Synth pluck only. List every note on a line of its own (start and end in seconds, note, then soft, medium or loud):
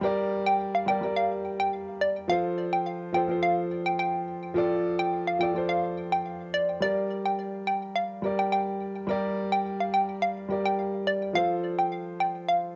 0.46 0.55 G5 medium
0.75 0.83 F5 medium
0.88 0.97 G5 medium
1.16 1.26 F5 medium
1.60 1.68 G5 medium
2.01 2.11 D5 medium
2.30 2.39 F5 loud
2.73 2.81 G5 medium
3.15 3.24 G5 medium
3.43 3.52 F5 medium
3.86 3.94 G5 medium
3.99 4.40 G5 medium
4.99 5.08 G5 medium
5.28 5.36 F5 medium
5.41 5.50 G5 medium
5.69 5.78 F5 medium
6.12 6.21 G5 medium
6.54 6.63 D5 medium
6.82 6.92 D5 loud
7.26 7.34 G5 medium
7.67 7.77 G5 medium
7.96 8.05 F5 medium
8.39 8.47 G5 medium
8.52 8.93 G5 medium
9.52 9.60 G5 medium
9.80 9.89 F5 medium
9.94 10.03 G5 medium
10.22 10.31 F5 medium
10.65 10.74 G5 medium
11.07 11.16 D5 medium
11.35 11.45 F5 loud
11.79 11.87 G5 medium
12.20 12.30 G5 medium
12.48 12.58 F5 medium